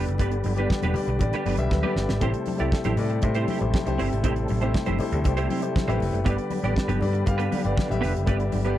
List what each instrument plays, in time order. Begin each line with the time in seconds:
Already playing: tonewheel organ D3 G3 B3, grand piano G3 G4 B4 D5
0.07 picked electric bass F#1, muted clean electric guitar stroke, closed hi-hat
0.18 picked electric bass G1, grand piano G3 G4 B4 D5, clean electric guitar B3 D4 G4 B4, kick, closed hi-hat, muted conga, low conga
0.31 muted clean electric guitar stroke, closed hi-hat
0.44 picked electric bass G1, muted clean electric guitar stroke, open hi-hat, high conga
0.55 grand piano G3 G4 B4 D5, clean electric guitar D4 G4 B4, closed hi-hat
0.59 clean electric guitar B3
0.70 muted clean electric guitar stroke, kick, snare
0.82 picked electric bass E1, clean electric guitar B3 D4 G4 B4, closed hi-hat, high conga
0.93 grand piano G3 G4 B4 D5, muted clean electric guitar stroke, open hi-hat, muted conga, low conga
1.07 picked electric bass B1, muted clean electric guitar stroke, closed hi-hat
1.19 picked electric bass A1, grand piano G3 G4 B4 D5, muted clean electric guitar stroke, kick, closed hi-hat, muted conga, low conga
1.33 clean electric guitar B3 D4 G4 B4, closed hi-hat
1.45 picked electric bass G1, clean electric guitar B3 D4 G4 B4, open hi-hat, high conga
1.57 picked electric bass B1, grand piano G3 G4 B4 E5, closed hi-hat
1.70 picked electric bass D2, grand piano B4, muted clean electric guitar stroke, kick, snare, muted conga, high conga
1.82 grand piano G3 G4 B4 D5, clean electric guitar B3 D4 G4 B4, high conga
1.96 picked electric bass G1, snare
2.09 picked electric bass G#1, muted clean electric guitar stroke, snare
2.20 picked electric bass A1, tonewheel organ C3 A3, grand piano A3 E4 G4 C5, clean electric guitar C4 E4 G4 C5, kick, closed hi-hat, low conga
2.34 muted clean electric guitar stroke, closed hi-hat
2.46 muted clean electric guitar stroke, open hi-hat, muted conga, high conga
2.58 picked electric bass C2, grand piano A3 E4 G4 C5, clean electric guitar C4 E4 G4 D5, closed hi-hat
2.72 kick, snare, muted conga
2.84 picked electric bass A1, clean electric guitar C4 E4 G4 C5, closed hi-hat, high conga
2.97 picked electric bass A2, grand piano A3 E4 G4 D5, muted clean electric guitar stroke, open hi-hat, muted conga, low conga
3.09 muted clean electric guitar stroke, closed hi-hat
3.22 picked electric bass A2, grand piano A3 E4 G4 C5, muted clean electric guitar stroke, kick, closed hi-hat, muted conga, low conga
3.34 clean electric guitar C4 E4 G4 C5, closed hi-hat
3.48 clean electric guitar C4 E4 G4 C5, open hi-hat, muted conga, high conga
3.60 picked electric bass A1, grand piano A3 E4 G4 C5, muted clean electric guitar stroke, closed hi-hat
3.74 muted clean electric guitar stroke, kick, snare, muted conga, high conga
3.86 picked electric bass C2, grand piano A3 E4 G4 C5, muted clean electric guitar stroke, closed hi-hat, high conga
3.98 picked electric bass G1, clean electric guitar C4 E4 G4 C5, open hi-hat, muted conga
4.11 picked electric bass G#1, muted clean electric guitar stroke, closed hi-hat
4.23 picked electric bass A1, grand piano A3 E4 G4 C5, clean electric guitar C4 E4 G4 C5, kick, closed hi-hat, low conga
4.36 muted clean electric guitar stroke, closed hi-hat
4.48 picked electric bass A1, muted clean electric guitar stroke, open hi-hat, muted conga, high conga
4.61 grand piano A3 E4 G4 C5, clean electric guitar C4 E4 G4 C5, closed hi-hat
4.74 muted clean electric guitar stroke, kick, snare, muted conga
4.86 picked electric bass G1, clean electric guitar C4 E4 G4 C5, closed hi-hat, high conga
4.99 grand piano A3 E4 G4 C5, open hi-hat, muted conga, low conga
5.12 picked electric bass D2, muted clean electric guitar stroke, closed hi-hat
5.24 picked electric bass C2, grand piano A3 E4 G4 C5, muted clean electric guitar stroke, kick, closed hi-hat, muted conga, low conga
5.37 clean electric guitar C4 E4 G4 C5, closed hi-hat
5.50 clean electric guitar C4 E4 G4 C5, open hi-hat, muted conga, high conga
5.61 grand piano A3 E4 G4 C5, muted clean electric guitar stroke, closed hi-hat
5.76 muted clean electric guitar stroke, kick, snare, muted conga, high conga
5.88 picked electric bass A1, grand piano A3 E4 G4 B4, clean electric guitar C4 E4 G4 C5, closed hi-hat, high conga
6.00 picked electric bass F1, muted clean electric guitar stroke, open hi-hat, muted conga
6.13 picked electric bass F#1, muted clean electric guitar stroke, closed hi-hat
6.24 picked electric bass G1, tonewheel organ D3 G3 B3, grand piano G3 G4 B4 D5, clean electric guitar B3 D4 G4 B4, kick, closed hi-hat, muted conga, low conga
6.38 muted clean electric guitar stroke, closed hi-hat
6.50 muted clean electric guitar stroke, open hi-hat, high conga
6.63 picked electric bass A1, grand piano G3 G4 B4 D5, clean electric guitar B3 D4 G4 D5, closed hi-hat
6.76 muted clean electric guitar stroke, kick, snare
6.88 picked electric bass G1, clean electric guitar B3 D4 G4 B4, closed hi-hat, high conga
7.01 picked electric bass G2, grand piano G3 G4 B4 D5, muted clean electric guitar stroke, open hi-hat, muted conga, low conga
7.13 muted clean electric guitar stroke, closed hi-hat
7.25 picked electric bass G2, grand piano G3 G4 B4 F5, muted clean electric guitar stroke, kick, closed hi-hat, muted conga, low conga
7.38 clean electric guitar B3 D4 G4 B4, closed hi-hat
7.50 clean electric guitar B3 D4 G4 B4, open hi-hat, muted conga, high conga
7.64 picked electric bass G1, grand piano G3 G4 B4 D5, muted clean electric guitar stroke, closed hi-hat
7.76 muted clean electric guitar stroke, kick, snare, muted conga, high conga
7.88 picked electric bass A1, grand piano G3 G4 B4 E5, muted clean electric guitar stroke, closed hi-hat, high conga
8.01 picked electric bass F1, clean electric guitar B3 D4 G4 B4, snare, open hi-hat, muted conga
8.15 picked electric bass F#1, muted clean electric guitar stroke, closed hi-hat
8.26 picked electric bass G1, grand piano G3 G4 B4 D5, clean electric guitar B3 D4 G4 B4, kick, closed hi-hat, muted conga, low conga
8.40 muted clean electric guitar stroke, closed hi-hat
8.52 picked electric bass G1, muted clean electric guitar stroke, open hi-hat, muted conga, high conga
8.65 grand piano G3 G4 B4 D5, clean electric guitar B3 D4 G4 B4, closed hi-hat